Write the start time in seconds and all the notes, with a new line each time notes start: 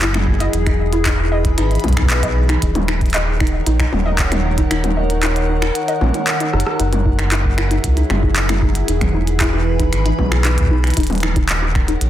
Already playing: F#1 F#3 E4 G#4 A#4 F#5
0.01 E4, clap, closed hi-hat
0.14 D#4, finger snap, high tom
0.27 kick
0.40 D#5, closed hi-hat
0.53 E1 E3, closed hi-hat
0.67 D#4, finger snap, kick, closed hi-hat
0.76 B4
0.93 E4, closed hi-hat
1.06 D#4, finger snap, kick, clap, closed hi-hat
1.13 B5
1.32 D#5
1.45 kick, closed hi-hat
1.58 G#1 D#4, finger snap, closed hi-hat
1.71 closed hi-hat
1.75 closed hi-hat
1.80 closed hi-hat
1.84 B1 E4, kick, closed hi-hat, high tom
1.88 kick, closed hi-hat
1.93 kick, closed hi-hat
1.97 D#4, finger snap, kick
2.01 kick
2.06 kick
2.10 clap, closed hi-hat
2.23 D#5, kick, closed hi-hat
2.49 D#4, finger snap, closed hi-hat
2.62 D#1 D#3, kick, closed hi-hat
2.75 D#4, closed hi-hat, high tom
2.88 D#4 A#4, finger snap
3.00 C#5, kick, closed hi-hat
3.06 closed hi-hat
3.10 closed hi-hat
3.14 D#5 F#5, clap, closed hi-hat
3.40 D#4, finger snap, kick
3.47 closed hi-hat
3.66 A#1 D#4, closed hi-hat
3.80 D#4, finger snap, kick, closed hi-hat
3.93 D#1, high tom
4.06 D#5
4.19 kick, clap, closed hi-hat
4.32 D#4, finger snap, closed hi-hat, high tom
4.58 D#4, kick, closed hi-hat
4.71 D#1 D#4, finger snap, closed hi-hat
4.84 closed hi-hat, high tom
4.97 D#5
5.10 closed hi-hat
5.23 D#4, finger snap, clap, closed hi-hat
5.36 closed hi-hat
5.49 D#4
5.62 D#4, finger snap
5.75 closed hi-hat
5.88 D#5, closed hi-hat
6.01 A#1 C#4, high tom
6.04 high tom
6.07 high tom
6.09 high tom
6.12 D#4, closed hi-hat, high tom
6.27 clap, closed hi-hat
6.40 D#4, closed hi-hat
6.53 F#1 D#4, cross-stick
6.60 closed hi-hat
6.67 cross-stick
6.80 F#1 F#3 D#4, closed hi-hat
6.93 closed hi-hat, high tom
6.99 E4 G#4
7.06 D#4, kick
7.19 finger snap, closed hi-hat
7.32 D#4, clap, closed hi-hat
7.45 kick
7.58 E4, finger snap
7.71 D#4, closed hi-hat
7.84 C#2, kick, closed hi-hat
7.97 D#4, closed hi-hat
8.10 F#1, finger snap, high tom
8.23 D#4, kick
8.36 clap, closed hi-hat
8.49 E4, finger snap, closed hi-hat, high tom
8.62 D#4, kick
8.75 closed hi-hat
8.88 E1 E3 D#4, closed hi-hat
9.01 finger snap, kick, closed hi-hat, high tom
9.06 B4
9.14 D#4
9.27 closed hi-hat
9.37 E4 B5, finger snap, kick, clap, closed hi-hat
9.53 D#4
9.80 D#4, kick, closed hi-hat
9.93 G#1, finger snap, closed hi-hat
10.06 D#4, closed hi-hat
10.19 B1, kick, high tom
10.32 E4, finger snap
10.45 D#4, clap, closed hi-hat
10.58 kick, closed hi-hat
10.60 kick
10.63 kick
10.66 kick
10.68 D#4, kick
10.84 finger snap, closed hi-hat
10.87 closed hi-hat
10.90 closed hi-hat
10.94 D#3, closed hi-hat
10.97 D#1 D#4, kick, closed hi-hat
11.00 closed hi-hat
11.03 closed hi-hat
11.07 closed hi-hat
11.10 closed hi-hat, high tom
11.13 A#4, closed hi-hat
11.15 D#4, closed hi-hat
11.18 closed hi-hat
11.20 D#4, finger snap, closed hi-hat
11.36 D#4 F#5, kick, closed hi-hat
11.49 C#5, clap, closed hi-hat
11.62 D#4
11.75 finger snap, kick
11.88 D#4, closed hi-hat
12.01 A#1, closed hi-hat